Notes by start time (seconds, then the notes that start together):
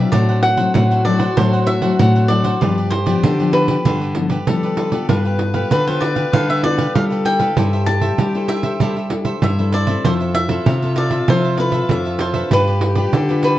Already playing: F#3 C4 D4 G4 B4 D5
0.06 F4
0.12 A2 D4 F#4 A4 C5 D5 F#5, pandeiro
0.29 A4 C5 F#5, pandeiro
0.43 F#5, pandeiro
0.57 F#3 C4 D4 A4 C5 F#5, pandeiro
0.74 A2 F#5, pandeiro
0.91 A4 C5 F#5, pandeiro
1.05 F#3 C4 D4 A4 C5 D5 F#5, pandeiro
1.19 A4 C5 F#5, pandeiro
1.36 A2 F#3 C4 D4 A4 C5 F#5, pandeiro
1.53 A4 C5 F#5, pandeiro
1.67 E5, muted cavaquinho stroke, pandeiro
1.82 F#3 C4 D4 A4 C5 F#5, pandeiro
1.99 A2 F#5, pandeiro
2.15 A4 C5 F#5, pandeiro
2.28 F#3 C4 D4 A4 C5 D5 F#5, pandeiro
2.44 A4 C5 F#5, pandeiro
2.61 G2 F3 B3 D4 F4 G4 B4 D5, pandeiro
2.77 G4 B4 D5, pandeiro
2.90 C5, muted cavaquinho stroke, pandeiro
3.06 F3 B3 D4 G4 B4 D5, pandeiro
3.23 D3, pandeiro
3.39 F3 B3 D4 G4 B4 D5, pandeiro
3.53 F4 G4 B4 D5, pandeiro
3.68 G4 B4 D5, pandeiro
3.85 G2 D3 F4 G4 B4 D5, pandeiro
4.01 G4 B4 D5, pandeiro
4.15 F3 B3 D4, muted cavaquinho stroke, pandeiro
4.29 G4 B4 D5, pandeiro
4.47 D3 F3 G3 B3 D4 A4, pandeiro
4.63 G4 B4 D5, pandeiro
4.77 F4 G4 B4 D5, pandeiro
4.92 B3 F4 G4 A4 B4 D5, pandeiro
5.09 G2 G3 D4 G4 B4 F5, pandeiro
5.25 G4 B4 F5, pandeiro
5.39 muted cavaquinho stroke, pandeiro
5.54 B3 F4 G4 A4 B4 F5, pandeiro
5.71 D3 B4, pandeiro
5.87 B3 F4 G4 A4 B4 C5 F5, pandeiro
6.00 D4 G4 B4 D5 F5, pandeiro
6.15 G4 B4 F5, pandeiro
6.33 D3 G3 D4 G4 B4 F5, pandeiro
6.49 G4 B4 E5 F5, pandeiro
6.63 B3 F4 A4 D5, muted cavaquinho stroke, pandeiro
6.78 G4 B4 F5, pandeiro
6.94 D3 G3 B3 F4 A4 F5, pandeiro
7.10 G4 B4 F5, pandeiro
7.25 D4 G4 B4 F5 G5, pandeiro
7.39 D4 E4 G4 A4 B4 F5, pandeiro
7.57 G2 G3 E4 G4 A4 C5 E5, pandeiro
7.73 A4 C5 E5, pandeiro
7.86 D4 E4 A4 A5, muted cavaquinho stroke, pandeiro
8.01 A4 C5 E5, pandeiro
8.18 G3, pandeiro
8.35 D4 E4 A4 C5 E5, pandeiro
8.48 E4 A4 C5 E5, pandeiro
8.63 A4 C5 E5, pandeiro
8.80 G3 D4 E4 A4 C5 E5, pandeiro
8.97 A4 C5 E5, pandeiro
9.10 D4 E4 A4, muted cavaquinho stroke, pandeiro
9.25 A4 C5 E5, pandeiro
9.42 G2 G3 E5, pandeiro
9.59 D4 E4 A4 C5 E5, pandeiro
9.72 E4 A4 C5 D5 E5, pandeiro
9.87 C4 E4 A4 C5 E5, pandeiro
10.04 F2 F3 F4 A4 C5 E5, pandeiro
10.20 A4 C5 E5, pandeiro
10.34 E5, muted cavaquinho stroke, pandeiro
10.49 C4 E4 A4 C5 E5, pandeiro
10.66 C3, pandeiro
10.82 C4 A4 C5 E5, pandeiro
10.96 F4 A4 C5 D5 E5, pandeiro
11.11 A4 C5 E5, pandeiro
11.28 C3 F3 F4 A4 C5 E5, pandeiro
11.44 A4 C5 E5, pandeiro
11.58 C4 E4 A4 B4, muted cavaquinho stroke, pandeiro
11.72 A4 C5 E5, pandeiro
11.89 F2 C3 C4 A4 E5, pandeiro
12.05 A4 C5 E5, pandeiro
12.19 F4 A4 C5 E5, pandeiro
12.34 D4 F4 A4 B4 C5 E5, pandeiro
12.51 G2 G3 F4 G4 B4 D5, pandeiro
12.67 G4 B4 D5, pandeiro
12.81 muted cavaquinho stroke, pandeiro
12.95 D4 F4 G4 B4 D5, pandeiro
13.13 D3, pandeiro
13.29 D4 F4 G4 B4 D5, pandeiro
13.43 F4 G4 B4 D5, pandeiro